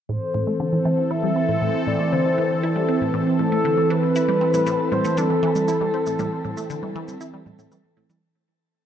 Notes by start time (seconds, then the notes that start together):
0.09 A2 E3 C4 A4 C5
0.34 A2
0.47 A3
0.60 D3 C5
0.72 E3
0.85 E3
1.11 E4 E5
1.23 G3
1.36 C4
1.49 A2
1.62 A2
1.87 A2 D5
2.00 A3
2.12 D3 C5
2.25 E3
2.38 E3
2.63 E4 A4
2.76 G3
2.89 C4
3.01 A2
3.14 A2
3.39 A2 A4
3.52 A3
3.65 D3
3.77 E3
3.90 E3 B4
4.16 E4, cabasa
4.28 G3, high conga
4.41 C4
4.54 A2, high conga, cabasa
4.67 A2, cabasa
4.92 A2 C5, high conga
5.05 A3, cabasa
5.17 D3 A4, high conga, cabasa
5.30 E3
5.43 E3
5.56 high conga, cabasa
5.68 E4, cabasa
5.81 G3, high conga
5.94 C4
6.07 A2, cabasa
6.19 A2, high conga, cabasa
6.45 A2, high conga
6.57 A3, cabasa
6.70 D3, cabasa
6.83 E3, high conga
6.95 E3
7.08 high conga, cabasa
7.21 E4, cabasa
7.34 G3
7.46 A2, high conga
7.59 A2, cabasa
7.71 E3, high conga, cabasa
7.97 A2
8.10 E3, high conga, cabasa